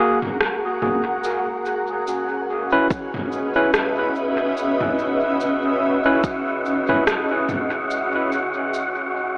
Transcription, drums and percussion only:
0, 0, Header, 1, 2, 480
1, 0, Start_track
1, 0, Tempo, 833333
1, 713, Time_signature, 4, 2, 24, 8
1, 5402, End_track
2, 0, Start_track
2, 0, Title_t, "Drums"
2, 129, Note_on_c, 9, 45, 59
2, 187, Note_off_c, 9, 45, 0
2, 233, Note_on_c, 9, 37, 79
2, 291, Note_off_c, 9, 37, 0
2, 473, Note_on_c, 9, 45, 73
2, 530, Note_off_c, 9, 45, 0
2, 713, Note_on_c, 9, 82, 53
2, 771, Note_off_c, 9, 82, 0
2, 954, Note_on_c, 9, 82, 30
2, 1011, Note_off_c, 9, 82, 0
2, 1194, Note_on_c, 9, 82, 55
2, 1252, Note_off_c, 9, 82, 0
2, 1673, Note_on_c, 9, 36, 108
2, 1674, Note_on_c, 9, 82, 55
2, 1731, Note_off_c, 9, 36, 0
2, 1732, Note_off_c, 9, 82, 0
2, 1810, Note_on_c, 9, 45, 63
2, 1867, Note_off_c, 9, 45, 0
2, 1913, Note_on_c, 9, 82, 31
2, 1971, Note_off_c, 9, 82, 0
2, 2153, Note_on_c, 9, 37, 92
2, 2153, Note_on_c, 9, 82, 54
2, 2211, Note_off_c, 9, 37, 0
2, 2211, Note_off_c, 9, 82, 0
2, 2393, Note_on_c, 9, 82, 30
2, 2451, Note_off_c, 9, 82, 0
2, 2633, Note_on_c, 9, 82, 52
2, 2691, Note_off_c, 9, 82, 0
2, 2769, Note_on_c, 9, 45, 79
2, 2826, Note_off_c, 9, 45, 0
2, 2873, Note_on_c, 9, 82, 30
2, 2931, Note_off_c, 9, 82, 0
2, 3113, Note_on_c, 9, 82, 55
2, 3171, Note_off_c, 9, 82, 0
2, 3592, Note_on_c, 9, 36, 109
2, 3593, Note_on_c, 9, 82, 56
2, 3650, Note_off_c, 9, 36, 0
2, 3650, Note_off_c, 9, 82, 0
2, 3834, Note_on_c, 9, 82, 31
2, 3891, Note_off_c, 9, 82, 0
2, 3968, Note_on_c, 9, 45, 64
2, 4026, Note_off_c, 9, 45, 0
2, 4074, Note_on_c, 9, 37, 94
2, 4074, Note_on_c, 9, 82, 56
2, 4131, Note_off_c, 9, 37, 0
2, 4131, Note_off_c, 9, 82, 0
2, 4313, Note_on_c, 9, 45, 79
2, 4313, Note_on_c, 9, 82, 30
2, 4370, Note_off_c, 9, 45, 0
2, 4370, Note_off_c, 9, 82, 0
2, 4554, Note_on_c, 9, 82, 54
2, 4611, Note_off_c, 9, 82, 0
2, 4793, Note_on_c, 9, 82, 30
2, 4850, Note_off_c, 9, 82, 0
2, 5033, Note_on_c, 9, 82, 54
2, 5091, Note_off_c, 9, 82, 0
2, 5402, End_track
0, 0, End_of_file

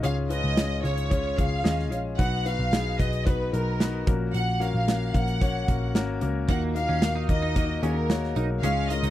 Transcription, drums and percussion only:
0, 0, Header, 1, 2, 480
1, 0, Start_track
1, 0, Tempo, 537153
1, 36, Time_signature, 4, 2, 24, 8
1, 8132, End_track
2, 0, Start_track
2, 0, Title_t, "Drums"
2, 31, Note_on_c, 9, 42, 74
2, 120, Note_off_c, 9, 42, 0
2, 271, Note_on_c, 9, 42, 59
2, 361, Note_off_c, 9, 42, 0
2, 512, Note_on_c, 9, 42, 80
2, 513, Note_on_c, 9, 38, 98
2, 601, Note_off_c, 9, 42, 0
2, 602, Note_off_c, 9, 38, 0
2, 758, Note_on_c, 9, 42, 55
2, 848, Note_off_c, 9, 42, 0
2, 872, Note_on_c, 9, 42, 47
2, 961, Note_off_c, 9, 42, 0
2, 995, Note_on_c, 9, 36, 73
2, 997, Note_on_c, 9, 42, 73
2, 1085, Note_off_c, 9, 36, 0
2, 1087, Note_off_c, 9, 42, 0
2, 1237, Note_on_c, 9, 36, 74
2, 1238, Note_on_c, 9, 42, 59
2, 1326, Note_off_c, 9, 36, 0
2, 1328, Note_off_c, 9, 42, 0
2, 1477, Note_on_c, 9, 38, 92
2, 1483, Note_on_c, 9, 42, 69
2, 1567, Note_off_c, 9, 38, 0
2, 1573, Note_off_c, 9, 42, 0
2, 1603, Note_on_c, 9, 38, 28
2, 1692, Note_off_c, 9, 38, 0
2, 1716, Note_on_c, 9, 42, 64
2, 1806, Note_off_c, 9, 42, 0
2, 1957, Note_on_c, 9, 36, 85
2, 1960, Note_on_c, 9, 42, 72
2, 2047, Note_off_c, 9, 36, 0
2, 2050, Note_off_c, 9, 42, 0
2, 2198, Note_on_c, 9, 42, 61
2, 2287, Note_off_c, 9, 42, 0
2, 2438, Note_on_c, 9, 42, 76
2, 2439, Note_on_c, 9, 38, 96
2, 2528, Note_off_c, 9, 38, 0
2, 2528, Note_off_c, 9, 42, 0
2, 2676, Note_on_c, 9, 36, 73
2, 2681, Note_on_c, 9, 42, 61
2, 2766, Note_off_c, 9, 36, 0
2, 2770, Note_off_c, 9, 42, 0
2, 2796, Note_on_c, 9, 42, 48
2, 2885, Note_off_c, 9, 42, 0
2, 2919, Note_on_c, 9, 36, 82
2, 2920, Note_on_c, 9, 42, 67
2, 3008, Note_off_c, 9, 36, 0
2, 3010, Note_off_c, 9, 42, 0
2, 3161, Note_on_c, 9, 42, 60
2, 3250, Note_off_c, 9, 42, 0
2, 3399, Note_on_c, 9, 38, 96
2, 3405, Note_on_c, 9, 42, 70
2, 3488, Note_off_c, 9, 38, 0
2, 3494, Note_off_c, 9, 42, 0
2, 3639, Note_on_c, 9, 36, 96
2, 3639, Note_on_c, 9, 42, 59
2, 3728, Note_off_c, 9, 42, 0
2, 3729, Note_off_c, 9, 36, 0
2, 3881, Note_on_c, 9, 42, 70
2, 3971, Note_off_c, 9, 42, 0
2, 4123, Note_on_c, 9, 42, 61
2, 4213, Note_off_c, 9, 42, 0
2, 4363, Note_on_c, 9, 42, 77
2, 4364, Note_on_c, 9, 38, 95
2, 4452, Note_off_c, 9, 42, 0
2, 4453, Note_off_c, 9, 38, 0
2, 4597, Note_on_c, 9, 36, 73
2, 4599, Note_on_c, 9, 42, 53
2, 4686, Note_off_c, 9, 36, 0
2, 4689, Note_off_c, 9, 42, 0
2, 4716, Note_on_c, 9, 42, 44
2, 4805, Note_off_c, 9, 42, 0
2, 4839, Note_on_c, 9, 36, 82
2, 4841, Note_on_c, 9, 42, 73
2, 4928, Note_off_c, 9, 36, 0
2, 4930, Note_off_c, 9, 42, 0
2, 5077, Note_on_c, 9, 42, 61
2, 5079, Note_on_c, 9, 36, 74
2, 5166, Note_off_c, 9, 42, 0
2, 5168, Note_off_c, 9, 36, 0
2, 5317, Note_on_c, 9, 38, 87
2, 5323, Note_on_c, 9, 42, 74
2, 5407, Note_off_c, 9, 38, 0
2, 5412, Note_off_c, 9, 42, 0
2, 5552, Note_on_c, 9, 42, 61
2, 5641, Note_off_c, 9, 42, 0
2, 5794, Note_on_c, 9, 42, 72
2, 5796, Note_on_c, 9, 36, 86
2, 5884, Note_off_c, 9, 42, 0
2, 5885, Note_off_c, 9, 36, 0
2, 6039, Note_on_c, 9, 42, 64
2, 6128, Note_off_c, 9, 42, 0
2, 6272, Note_on_c, 9, 42, 79
2, 6273, Note_on_c, 9, 38, 96
2, 6362, Note_off_c, 9, 42, 0
2, 6363, Note_off_c, 9, 38, 0
2, 6514, Note_on_c, 9, 36, 72
2, 6514, Note_on_c, 9, 42, 59
2, 6603, Note_off_c, 9, 36, 0
2, 6604, Note_off_c, 9, 42, 0
2, 6756, Note_on_c, 9, 36, 76
2, 6756, Note_on_c, 9, 42, 75
2, 6845, Note_off_c, 9, 42, 0
2, 6846, Note_off_c, 9, 36, 0
2, 6998, Note_on_c, 9, 42, 61
2, 7087, Note_off_c, 9, 42, 0
2, 7236, Note_on_c, 9, 38, 101
2, 7242, Note_on_c, 9, 42, 70
2, 7326, Note_off_c, 9, 38, 0
2, 7332, Note_off_c, 9, 42, 0
2, 7360, Note_on_c, 9, 38, 30
2, 7449, Note_off_c, 9, 38, 0
2, 7471, Note_on_c, 9, 42, 57
2, 7560, Note_off_c, 9, 42, 0
2, 7715, Note_on_c, 9, 42, 79
2, 7804, Note_off_c, 9, 42, 0
2, 7955, Note_on_c, 9, 42, 65
2, 8045, Note_off_c, 9, 42, 0
2, 8073, Note_on_c, 9, 42, 50
2, 8132, Note_off_c, 9, 42, 0
2, 8132, End_track
0, 0, End_of_file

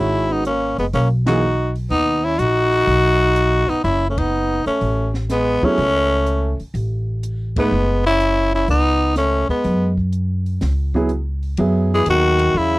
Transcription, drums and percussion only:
0, 0, Header, 1, 2, 480
1, 0, Start_track
1, 0, Tempo, 483871
1, 1892, Time_signature, 4, 2, 24, 8
1, 12687, End_track
2, 0, Start_track
2, 0, Title_t, "Drums"
2, 445, Note_on_c, 9, 42, 44
2, 544, Note_off_c, 9, 42, 0
2, 777, Note_on_c, 9, 46, 34
2, 876, Note_off_c, 9, 46, 0
2, 926, Note_on_c, 9, 46, 42
2, 1026, Note_off_c, 9, 46, 0
2, 1255, Note_on_c, 9, 38, 65
2, 1256, Note_on_c, 9, 51, 60
2, 1354, Note_off_c, 9, 38, 0
2, 1355, Note_off_c, 9, 51, 0
2, 1742, Note_on_c, 9, 46, 35
2, 1841, Note_off_c, 9, 46, 0
2, 1888, Note_on_c, 9, 46, 40
2, 1987, Note_off_c, 9, 46, 0
2, 2369, Note_on_c, 9, 42, 47
2, 2468, Note_off_c, 9, 42, 0
2, 2702, Note_on_c, 9, 46, 31
2, 2801, Note_off_c, 9, 46, 0
2, 2852, Note_on_c, 9, 46, 41
2, 2951, Note_off_c, 9, 46, 0
2, 3332, Note_on_c, 9, 42, 47
2, 3431, Note_off_c, 9, 42, 0
2, 3661, Note_on_c, 9, 46, 35
2, 3760, Note_off_c, 9, 46, 0
2, 3814, Note_on_c, 9, 46, 37
2, 3913, Note_off_c, 9, 46, 0
2, 4143, Note_on_c, 9, 36, 61
2, 4144, Note_on_c, 9, 51, 64
2, 4242, Note_off_c, 9, 36, 0
2, 4243, Note_off_c, 9, 51, 0
2, 4622, Note_on_c, 9, 46, 33
2, 4722, Note_off_c, 9, 46, 0
2, 4773, Note_on_c, 9, 46, 43
2, 4872, Note_off_c, 9, 46, 0
2, 5099, Note_on_c, 9, 38, 28
2, 5198, Note_off_c, 9, 38, 0
2, 5252, Note_on_c, 9, 38, 36
2, 5253, Note_on_c, 9, 42, 49
2, 5351, Note_off_c, 9, 38, 0
2, 5352, Note_off_c, 9, 42, 0
2, 5583, Note_on_c, 9, 36, 49
2, 5682, Note_off_c, 9, 36, 0
2, 5730, Note_on_c, 9, 46, 40
2, 5829, Note_off_c, 9, 46, 0
2, 6214, Note_on_c, 9, 42, 46
2, 6313, Note_off_c, 9, 42, 0
2, 6543, Note_on_c, 9, 46, 32
2, 6642, Note_off_c, 9, 46, 0
2, 6693, Note_on_c, 9, 46, 44
2, 6792, Note_off_c, 9, 46, 0
2, 7174, Note_on_c, 9, 42, 50
2, 7273, Note_off_c, 9, 42, 0
2, 7502, Note_on_c, 9, 36, 77
2, 7503, Note_on_c, 9, 51, 73
2, 7601, Note_off_c, 9, 36, 0
2, 7602, Note_off_c, 9, 51, 0
2, 8133, Note_on_c, 9, 42, 48
2, 8232, Note_off_c, 9, 42, 0
2, 8608, Note_on_c, 9, 46, 42
2, 8708, Note_off_c, 9, 46, 0
2, 9085, Note_on_c, 9, 38, 37
2, 9086, Note_on_c, 9, 42, 52
2, 9184, Note_off_c, 9, 38, 0
2, 9185, Note_off_c, 9, 42, 0
2, 9416, Note_on_c, 9, 36, 48
2, 9515, Note_off_c, 9, 36, 0
2, 9566, Note_on_c, 9, 46, 43
2, 9665, Note_off_c, 9, 46, 0
2, 9895, Note_on_c, 9, 36, 39
2, 9994, Note_off_c, 9, 36, 0
2, 10044, Note_on_c, 9, 42, 44
2, 10143, Note_off_c, 9, 42, 0
2, 10378, Note_on_c, 9, 46, 32
2, 10477, Note_off_c, 9, 46, 0
2, 10525, Note_on_c, 9, 38, 35
2, 10526, Note_on_c, 9, 46, 45
2, 10624, Note_off_c, 9, 38, 0
2, 10625, Note_off_c, 9, 46, 0
2, 10855, Note_on_c, 9, 36, 46
2, 10954, Note_off_c, 9, 36, 0
2, 11002, Note_on_c, 9, 42, 45
2, 11101, Note_off_c, 9, 42, 0
2, 11336, Note_on_c, 9, 46, 34
2, 11435, Note_off_c, 9, 46, 0
2, 11479, Note_on_c, 9, 51, 54
2, 11579, Note_off_c, 9, 51, 0
2, 11963, Note_on_c, 9, 44, 50
2, 11963, Note_on_c, 9, 51, 61
2, 12062, Note_off_c, 9, 44, 0
2, 12062, Note_off_c, 9, 51, 0
2, 12293, Note_on_c, 9, 51, 59
2, 12392, Note_off_c, 9, 51, 0
2, 12687, End_track
0, 0, End_of_file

